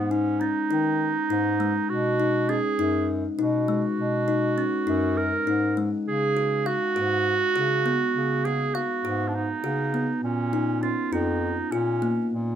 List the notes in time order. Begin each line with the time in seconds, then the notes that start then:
Already playing: G#2 B3
0.11 C#4 D#4
0.40 C#4 D#4
0.71 D#3 D#4
1.30 G#2 D#4
1.60 G#3
1.89 B2 F#4
2.20 D#4
2.49 C#4 G#4
2.79 F#2 D#4
3.38 B2 D#4 F#4
3.68 G#3
3.98 B2
4.28 D#4
4.58 C#4
4.87 F#2 D#4
5.17 A#4
5.47 G#2 D#4
5.77 G#3
6.07 C#3 G#4
6.37 F#4
6.66 F#4 F5
6.96 G#2 F#4
7.56 C#3 F#4
7.86 B3
8.15 C#3
8.45 F#4 G#4
8.74 F#4 F5
9.05 G#2 F#4
9.28 D4
9.35 D#4
9.64 C#3 F#4
9.94 B3
10.23 A#2 C#4
10.53 D#4
10.82 C#4 F4
11.12 F2 D#4 F4
11.72 A#2 C#4 F4
12.02 A#3
12.32 A#2